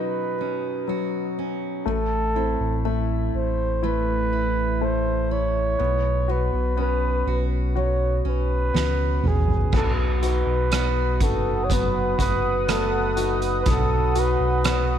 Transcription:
Already playing: B2 F#3 B3 C#4 D#4 F#4 B4
0.41 C#4
0.88 F#3 F#4
1.39 C#4
1.86 A1 A2 A3 A4
2.36 C4 E4
2.60 A1
2.85 A3 E4
3.34 A1 C5
3.82 A3 E4 B4
4.33 E4
4.81 A3 C5
5.31 E4 C#5
5.79 B1 B2 B3
6.28 B3 F#4 B4
6.53 B1
6.77 B3 C#4
6.81 B4
7.26 B1 F#4
7.76 F#3 F#4 C#5
8.25 B1 C#4
8.29 B4
8.74 C#2 B3 F#4, snare
9.22 A1 C#4, mid tom
9.28 G#4
9.48 floor tom
9.72 B1 B2 B3 F#4 B4 F#5 D#6, kick, crash
9.77 A4
10.22 D#4 F#4 B4, closed hi-hat
10.46 B1
10.71 B3 F#4, cross-stick, closed hi-hat
11.20 F#1 D#4 F#4 A4, kick, closed hi-hat
11.64 C#5
11.69 F#3 B3 B4, kick, closed hi-hat
12.18 F#1 F#4 B4, kick, closed hi-hat
12.67 A3 B3 A4, cross-stick, closed hi-hat
13.16 D#4 F#4, closed hi-hat
13.42 closed hi-hat
13.61 B4
13.66 B1 B2 F#3 F#4, kick, closed hi-hat
13.70 A4
14.15 D#4 F#4, closed hi-hat
14.19 B4
14.40 B1
14.64 B3 F#4, cross-stick, closed hi-hat

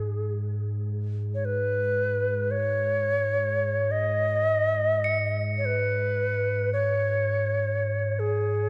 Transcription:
Already playing: G#2 G#4
1.35 C#5
1.45 B4
2.51 C#5
3.91 D#5
5.04 C#7
5.58 C#5
5.65 B4
6.73 C#5
8.19 G#4

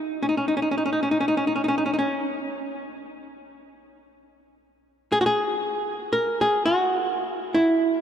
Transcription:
Already playing: D#4
0.22 C#4
0.29 D#4
0.37 C#4
0.48 D#4
0.57 C#4
0.62 D#4
0.71 C#4
0.78 D#4
0.86 C#4
0.93 D#4
1.03 C#4
1.11 D#4
1.21 C#4
1.28 D#4
1.37 C#4
1.47 D#4
1.56 C#4
1.64 D#4
1.68 C#4
1.78 D#4
1.86 C#4
1.94 D#4
1.99 C#4
5.12 G#4
5.21 F#4
5.26 G#4
6.13 A#4
6.41 G#4
6.66 F#4
7.54 E4

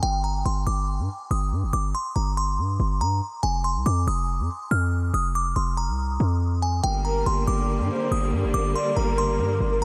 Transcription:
0.03 G1 G5
0.24 A#5
0.46 G1 C6
0.67 G1 D6
1.00 G2
1.31 G1 D#6
1.52 G2
1.63 G1
1.73 G1 D6
1.95 C6
2.16 G1 A#5
2.37 C6
2.58 G2
2.80 G1
3.01 G2 A#5
3.43 F1 G#5
3.64 C6
3.76 C2
3.86 F2 D6
4.07 F1 D#6
4.40 F2
4.71 F2 F6
5.14 F1 D#6
5.35 D6
5.56 F1 C6
5.77 A#5
5.89 C2
6.20 F2
6.62 G#5
6.84 G1 D3 G3 A#3 G5
7.05 A#4 A#5
7.26 G1 C6
7.47 G1 D6
7.80 G2
7.91 C5
8.12 G1 D#6
8.33 G2
8.44 G1
8.54 G1 D6
8.76 D5 C6
8.97 G1 A#4 A#5
9.18 C6
9.39 G2
9.61 G1

